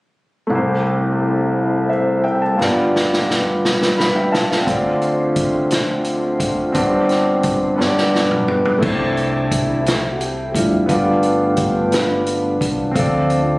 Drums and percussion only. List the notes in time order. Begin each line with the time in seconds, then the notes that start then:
2.61 snare
2.96 snare
3.13 snare
3.30 snare
3.65 snare
3.82 snare
4.00 snare
4.34 snare
4.52 snare
4.67 kick, closed hi-hat
5.02 closed hi-hat
5.36 kick, closed hi-hat
5.71 snare, closed hi-hat
6.04 closed hi-hat
6.40 kick, closed hi-hat
6.75 kick, closed hi-hat
7.09 snare, closed hi-hat
7.43 kick, closed hi-hat
7.81 snare
7.98 snare
8.15 snare
8.31 mid tom
8.48 floor tom
8.65 floor tom
8.82 kick, crash
9.17 closed hi-hat
9.51 kick, closed hi-hat
9.86 snare, closed hi-hat
10.21 closed hi-hat
10.55 kick, closed hi-hat
10.89 kick, closed hi-hat
11.23 closed hi-hat
11.57 kick, closed hi-hat
11.92 snare, closed hi-hat
12.26 closed hi-hat
12.61 kick, closed hi-hat
12.96 kick, closed hi-hat
13.30 closed hi-hat